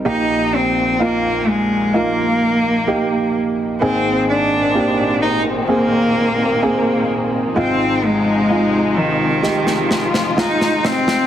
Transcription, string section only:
0, 0, Header, 1, 2, 480
1, 0, Start_track
1, 0, Key_signature, -3, "major"
1, 0, Tempo, 937500
1, 30, Time_signature, 4, 2, 24, 8
1, 5769, End_track
2, 0, Start_track
2, 0, Title_t, "String section"
2, 0, Program_c, 0, 48
2, 1948, Note_on_c, 0, 56, 51
2, 1949, Note_on_c, 0, 46, 50
2, 1949, Note_on_c, 0, 60, 58
2, 1952, Note_on_c, 0, 51, 53
2, 2899, Note_off_c, 0, 56, 0
2, 2912, Note_on_c, 0, 58, 59
2, 3850, Note_off_c, 0, 60, 0
2, 3851, Note_off_c, 0, 46, 0
2, 3852, Note_off_c, 0, 51, 0
2, 3862, Note_off_c, 0, 58, 0
2, 3870, Note_on_c, 0, 48, 52
2, 3871, Note_on_c, 0, 53, 50
2, 3871, Note_on_c, 0, 56, 48
2, 3871, Note_on_c, 0, 63, 61
2, 4821, Note_off_c, 0, 63, 0
2, 4834, Note_on_c, 0, 65, 66
2, 5769, Note_off_c, 0, 48, 0
2, 5769, Note_off_c, 0, 53, 0
2, 5769, Note_off_c, 0, 56, 0
2, 5769, Note_off_c, 0, 65, 0
2, 5769, End_track
0, 0, End_of_file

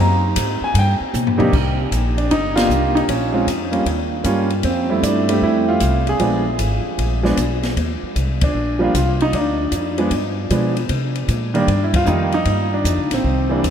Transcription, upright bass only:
0, 0, Header, 1, 3, 480
1, 0, Start_track
1, 0, Key_signature, -3, "minor"
1, 0, Tempo, 390371
1, 1876, Time_signature, 4, 2, 24, 8
1, 16848, End_track
2, 0, Start_track
2, 0, Title_t, "Upright bass"
2, 0, Program_c, 0, 32
2, 0, Note_on_c, 0, 42, 92
2, 424, Note_off_c, 0, 42, 0
2, 446, Note_on_c, 0, 44, 88
2, 739, Note_off_c, 0, 44, 0
2, 913, Note_on_c, 0, 43, 86
2, 1211, Note_off_c, 0, 43, 0
2, 1398, Note_on_c, 0, 47, 91
2, 1563, Note_off_c, 0, 47, 0
2, 1563, Note_on_c, 0, 43, 64
2, 1709, Note_off_c, 0, 43, 0
2, 1716, Note_on_c, 0, 41, 70
2, 1865, Note_off_c, 0, 41, 0
2, 1876, Note_on_c, 0, 36, 73
2, 2341, Note_off_c, 0, 36, 0
2, 2358, Note_on_c, 0, 34, 79
2, 2821, Note_off_c, 0, 34, 0
2, 2840, Note_on_c, 0, 31, 70
2, 3296, Note_off_c, 0, 31, 0
2, 3303, Note_on_c, 0, 36, 75
2, 3773, Note_off_c, 0, 36, 0
2, 3789, Note_on_c, 0, 34, 77
2, 4256, Note_off_c, 0, 34, 0
2, 4268, Note_on_c, 0, 41, 76
2, 4732, Note_off_c, 0, 41, 0
2, 4739, Note_on_c, 0, 39, 74
2, 5210, Note_off_c, 0, 39, 0
2, 5218, Note_on_c, 0, 43, 85
2, 5690, Note_off_c, 0, 43, 0
2, 5703, Note_on_c, 0, 41, 78
2, 6172, Note_off_c, 0, 41, 0
2, 6181, Note_on_c, 0, 43, 81
2, 6651, Note_off_c, 0, 43, 0
2, 6663, Note_on_c, 0, 41, 76
2, 7132, Note_off_c, 0, 41, 0
2, 7145, Note_on_c, 0, 36, 84
2, 7613, Note_off_c, 0, 36, 0
2, 7619, Note_on_c, 0, 34, 78
2, 8090, Note_off_c, 0, 34, 0
2, 8103, Note_on_c, 0, 32, 76
2, 8403, Note_off_c, 0, 32, 0
2, 8587, Note_on_c, 0, 34, 74
2, 9054, Note_off_c, 0, 34, 0
2, 9070, Note_on_c, 0, 35, 77
2, 9536, Note_off_c, 0, 35, 0
2, 9546, Note_on_c, 0, 39, 73
2, 9845, Note_off_c, 0, 39, 0
2, 10028, Note_on_c, 0, 36, 78
2, 10496, Note_off_c, 0, 36, 0
2, 10504, Note_on_c, 0, 34, 69
2, 10974, Note_off_c, 0, 34, 0
2, 10998, Note_on_c, 0, 36, 83
2, 11461, Note_off_c, 0, 36, 0
2, 11476, Note_on_c, 0, 38, 80
2, 11941, Note_off_c, 0, 38, 0
2, 11949, Note_on_c, 0, 41, 83
2, 12417, Note_off_c, 0, 41, 0
2, 12429, Note_on_c, 0, 43, 74
2, 12898, Note_off_c, 0, 43, 0
2, 12917, Note_on_c, 0, 47, 80
2, 13382, Note_off_c, 0, 47, 0
2, 13396, Note_on_c, 0, 48, 78
2, 13861, Note_off_c, 0, 48, 0
2, 13874, Note_on_c, 0, 46, 84
2, 14341, Note_off_c, 0, 46, 0
2, 14357, Note_on_c, 0, 43, 75
2, 14823, Note_off_c, 0, 43, 0
2, 14842, Note_on_c, 0, 41, 85
2, 15306, Note_off_c, 0, 41, 0
2, 15315, Note_on_c, 0, 43, 80
2, 15782, Note_off_c, 0, 43, 0
2, 15793, Note_on_c, 0, 41, 79
2, 15948, Note_on_c, 0, 37, 52
2, 15966, Note_off_c, 0, 41, 0
2, 16113, Note_off_c, 0, 37, 0
2, 16122, Note_on_c, 0, 34, 59
2, 16269, Note_off_c, 0, 34, 0
2, 16281, Note_on_c, 0, 36, 70
2, 16746, Note_off_c, 0, 36, 0
2, 16768, Note_on_c, 0, 40, 75
2, 16848, Note_off_c, 0, 40, 0
2, 16848, End_track
3, 0, Start_track
3, 0, Title_t, "Muted upright bass strokes"
3, 754, Note_on_c, 9, 29, 41
3, 877, Note_off_c, 9, 29, 0
3, 1235, Note_on_c, 9, 29, 44
3, 1358, Note_off_c, 9, 29, 0
3, 9870, Note_on_c, 9, 29, 38
3, 9993, Note_off_c, 9, 29, 0
3, 16848, End_track
0, 0, End_of_file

